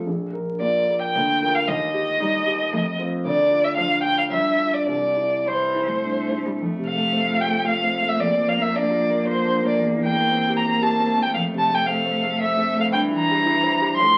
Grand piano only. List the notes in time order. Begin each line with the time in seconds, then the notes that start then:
0.06 A#1
0.33 A#4
0.61 F4
0.88 A#4
1.15 D2
1.42 F4 A#4
1.68 D#2
1.94 G4
2.20 D#4
2.47 G4
2.73 F2
2.99 C4 F4
3.25 D2
3.51 F4
3.76 D4
4.04 F4
4.31 G2
4.58 D4 F4
4.87 C2
5.17 E4
5.45 C4
5.74 E4
6.03 G2
6.31 E4
6.60 F2
6.77 C3
6.95 A3
7.13 C4
7.30 F4
7.47 A4
7.64 F4
7.83 C4
8.02 A3
8.20 F2
8.37 F3
8.57 A#3
8.74 D4
8.91 F4
9.09 A#4
9.27 F4
9.45 D4
9.62 A#3
9.79 E2
9.96 E3
10.13 A#3
10.31 C4
10.49 G4
10.66 A#4
10.82 G4
10.99 C4
11.18 A#3
11.34 F2
11.53 C3
11.69 A3
11.87 C4
12.06 C5
12.24 A4
12.40 C5
12.57 C4
12.76 A3
12.93 G2
13.11 E3
13.30 G3
13.46 E4
13.63 C5
13.81 G4
13.99 A2